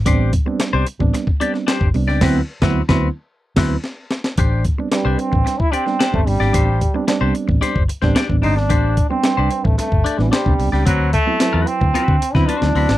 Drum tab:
CC |----------------|x---------x-----|----------------|----------------|
HH |x-x-x-x-x-x-x-o-|----------------|x-x-x-x-x-x-x-o-|x-x-x-x-x-x-x-o-|
SD |----o---o--oo--o|o--o-o----o-o-oo|----o---o--oo--o|----o---o--oo--o|
BD |o-o----o-o---o--|o--o-o----o-----|o-o----o-o---o--|o-o----o-o-o-o--|

CC |----------------|----------------|
HH |x-x-x-x-x-x-x-o-|x-x-x-x-x-x-x-o-|
SD |----o---o--oo--o|----o---o--o-o-o|
BD |o-o----o-o---o--|o-o----o-o-o----|